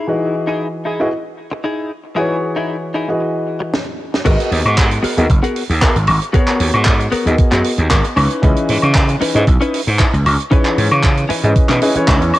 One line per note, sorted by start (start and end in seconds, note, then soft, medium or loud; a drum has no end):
0.00 0.34 D#4 medium
0.00 0.34 E4 medium
0.00 0.35 G#4 medium
0.07 0.96 E3 medium
0.07 0.97 F#4 medium
0.07 0.97 G#4 medium
0.07 0.97 B4 medium
0.07 0.97 D#5 medium
0.47 0.67 D#4 medium
0.47 0.67 E4 medium
0.47 0.67 G#4 medium
0.85 1.00 D#4 medium
0.85 1.00 E4 medium
0.85 1.00 G#4 medium
1.00 1.07 E4 medium
1.00 1.07 F#4 medium
1.00 1.07 G#4 medium
1.00 1.07 B4 medium
1.00 1.07 D#5 medium
1.12 muted clean electric guitar stroke soft
1.51 muted clean electric guitar stroke loud
1.64 1.90 D#4 medium
1.64 1.91 E4 medium
1.64 1.91 G#4 medium
2.16 3.05 E3 medium
2.16 2.36 D#4 loud
2.16 2.37 E4 loud
2.16 3.05 F#4 medium
2.16 3.06 G#4 medium
2.16 2.37 G#4 loud
2.16 3.06 B4 medium
2.16 3.06 C#5 medium
2.56 2.76 D#4 medium
2.56 2.76 E4 medium
2.56 2.76 G#4 medium
2.94 3.09 D#4 medium
2.94 3.09 E4 medium
2.94 3.09 G#4 medium
3.08 3.73 E3 medium
3.08 3.73 F#4 medium
3.08 3.74 G#4 medium
3.08 3.74 B4 medium
3.08 3.74 D#5 medium
3.21 muted clean electric guitar stroke soft
3.60 muted clean electric guitar stroke loud
3.74 snare loud
4.14 snare medium
4.25 4.35 G#1 loud
4.25 4.51 B3 loud
4.25 5.14 B3 medium
4.25 4.51 F#4 medium
4.25 5.14 F#4 medium
4.25 4.52 G#4 medium
4.25 5.14 G#4 medium
4.25 4.52 A#4 loud
4.25 5.15 A#4 medium
4.25 5.15 D#5 medium
4.25 kick loud
4.25 closed hi-hat medium
4.25 crash medium
4.40 closed hi-hat medium
4.51 4.61 D#2 medium
4.51 open hi-hat loud
4.65 4.98 G#2 medium
4.65 closed hi-hat medium
4.65 high woodblock medium
4.77 muted clean electric guitar stroke soft
4.77 kick loud
4.77 clap loud
4.77 closed hi-hat medium
4.91 closed hi-hat medium
5.03 5.23 B3 medium
5.03 5.23 F#4 medium
5.03 5.24 G#4 medium
5.03 5.24 A#4 loud
5.03 muted slap bass stroke soft
5.03 open hi-hat loud
5.17 5.26 D#2 medium
5.17 5.24 B3 medium
5.17 5.24 F#4 medium
5.17 5.25 G#4 medium
5.17 5.25 A#4 medium
5.17 5.25 D#5 loud
5.17 closed hi-hat medium
5.30 5.39 F#1 loud
5.30 kick loud
5.30 closed hi-hat medium
5.43 5.62 B3 loud
5.43 5.63 F#4 loud
5.43 5.63 G#4 loud
5.43 5.63 A#4 loud
5.43 closed hi-hat medium
5.56 open hi-hat loud
5.70 5.87 D#2 medium
5.70 open hi-hat medium
5.81 5.95 B3 medium
5.81 5.96 F#4 medium
5.81 5.96 G#4 medium
5.81 5.96 A#4 loud
5.81 kick loud
5.81 clap loud
5.81 closed hi-hat medium
5.96 6.04 G#1 medium
5.96 closed hi-hat medium
6.07 6.18 G#1 medium
6.07 muted clean electric guitar stroke soft
6.07 open hi-hat loud
6.07 high woodblock medium
6.22 closed hi-hat medium
6.33 7.22 B3 medium
6.33 6.60 B3 loud
6.33 7.23 F#4 medium
6.33 6.60 F#4 loud
6.33 7.23 G#4 medium
6.33 6.60 G#4 medium
6.33 6.60 A#4 loud
6.33 7.23 A#4 medium
6.33 7.24 C#5 medium
6.33 kick loud
6.33 closed hi-hat medium
6.48 clap soft
6.48 closed hi-hat medium
6.60 6.70 D#2 medium
6.60 open hi-hat loud
6.74 7.06 G#2 medium
6.74 high woodblock medium
6.85 muted clean electric guitar stroke soft
6.85 kick loud
6.85 clap loud
6.85 closed hi-hat medium
7.00 closed hi-hat soft
7.12 7.32 B3 medium
7.12 7.32 F#4 medium
7.12 7.32 G#4 medium
7.12 7.33 A#4 medium
7.12 muted slap bass stroke soft
7.12 open hi-hat loud
7.25 7.35 D#2 medium
7.25 8.15 B3 medium
7.25 8.15 F#4 medium
7.25 8.15 G#4 medium
7.25 8.16 A#4 medium
7.25 8.16 D#5 medium
7.25 closed hi-hat soft
7.38 kick loud
7.38 closed hi-hat medium
7.52 7.61 F#2 medium
7.52 7.71 B3 loud
7.52 7.71 F#4 loud
7.52 7.72 G#4 medium
7.52 7.72 A#4 loud
7.52 clap soft
7.52 closed hi-hat medium
7.64 open hi-hat loud
7.78 7.87 D#2 medium
7.78 closed hi-hat medium
7.90 8.00 G#1 medium
7.90 8.04 B3 medium
7.90 8.04 F#4 medium
7.90 8.05 G#4 medium
7.90 8.05 A#4 loud
7.90 kick loud
7.90 clap loud
7.90 closed hi-hat medium
7.90 high woodblock medium
8.04 closed hi-hat medium
8.16 8.26 C#2 medium
8.16 8.80 C#4 medium
8.16 8.80 D#4 medium
8.16 8.80 E4 medium
8.16 8.80 B4 loud
8.16 open hi-hat loud
8.16 high woodblock medium
8.30 closed hi-hat medium
8.42 8.52 C#2 loud
8.42 9.31 E3 medium
8.42 9.31 C#4 medium
8.42 9.32 G#4 medium
8.42 9.32 B4 medium
8.42 9.32 D#5 medium
8.42 kick loud
8.42 closed hi-hat medium
8.56 closed hi-hat medium
8.69 8.79 G#2 medium
8.69 open hi-hat loud
8.82 9.15 C#3 medium
8.82 closed hi-hat medium
8.82 high woodblock medium
8.95 muted clean electric guitar stroke soft
8.95 kick loud
8.95 clap loud
8.95 closed hi-hat medium
9.09 closed hi-hat medium
9.21 9.41 C#4 medium
9.21 9.41 D#4 medium
9.21 9.41 E4 medium
9.21 9.42 B4 loud
9.21 muted slap bass stroke soft
9.21 open hi-hat loud
9.35 9.44 G#2 medium
9.35 9.42 C#4 medium
9.35 9.42 E4 medium
9.35 9.42 G#4 medium
9.35 9.42 B4 medium
9.35 9.42 D#5 loud
9.35 closed hi-hat medium
9.47 9.57 B1 loud
9.47 kick loud
9.47 closed hi-hat medium
9.61 9.80 C#4 loud
9.61 9.80 D#4 loud
9.61 9.80 E4 medium
9.61 9.81 B4 loud
9.61 closed hi-hat medium
9.74 open hi-hat loud
9.87 10.05 G#2 medium
9.87 open hi-hat medium
9.99 10.13 C#4 medium
9.99 10.13 D#4 medium
9.99 10.13 E4 medium
9.99 10.14 B4 loud
9.99 kick loud
9.99 clap loud
9.99 closed hi-hat medium
10.13 10.22 C#2 medium
10.13 closed hi-hat medium
10.25 10.35 C#2 medium
10.25 muted clean electric guitar stroke soft
10.25 open hi-hat loud
10.25 high woodblock medium
10.40 closed hi-hat medium
10.51 11.40 E3 medium
10.51 11.40 C#4 medium
10.51 10.77 C#4 loud
10.51 10.78 D#4 loud
10.51 10.78 E4 loud
10.51 11.40 G#4 medium
10.51 11.41 B4 medium
10.51 10.78 B4 loud
10.51 11.41 C#5 medium
10.51 kick loud
10.51 closed hi-hat medium
10.65 clap soft
10.65 closed hi-hat soft
10.78 10.87 G#2 medium
10.78 open hi-hat loud
10.91 11.24 C#3 medium
10.91 high woodblock medium
11.04 muted clean electric guitar stroke soft
11.04 kick loud
11.04 clap loud
11.04 closed hi-hat medium
11.17 closed hi-hat medium
11.29 11.49 C#4 medium
11.29 11.50 D#4 medium
11.29 11.50 E4 medium
11.29 11.50 B4 medium
11.29 muted slap bass stroke soft
11.29 open hi-hat loud
11.44 11.52 G#2 medium
11.44 11.80 E3 medium
11.44 11.80 C#4 medium
11.44 11.80 G#4 medium
11.44 11.80 B4 medium
11.44 11.80 D#5 medium
11.44 closed hi-hat soft
11.56 kick loud
11.56 closed hi-hat medium
11.69 11.78 B2 medium
11.69 11.89 C#4 loud
11.69 11.89 D#4 loud
11.69 11.89 E4 medium
11.69 11.89 B4 loud
11.69 clap soft
11.69 closed hi-hat medium
11.82 11.92 C#4 medium
11.82 11.93 E4 medium
11.82 11.93 G#4 medium
11.82 11.93 B4 medium
11.82 11.93 D#5 loud
11.82 open hi-hat loud
11.95 12.39 E3 medium
11.95 12.39 C#4 medium
11.95 12.39 G#4 medium
11.95 12.39 B4 medium
11.95 12.39 C#5 loud
11.95 muted slap bass stroke soft
11.95 closed hi-hat medium
12.07 12.21 C#2 medium
12.07 12.22 C#4 medium
12.07 12.22 D#4 medium
12.07 12.22 E4 medium
12.07 12.22 F#4 medium
12.07 kick loud
12.07 clap loud
12.07 closed hi-hat medium
12.07 high woodblock medium
12.21 12.30 E2 medium
12.21 closed hi-hat medium
12.33 muted clean electric guitar stroke soft
12.33 open hi-hat loud
12.33 high woodblock medium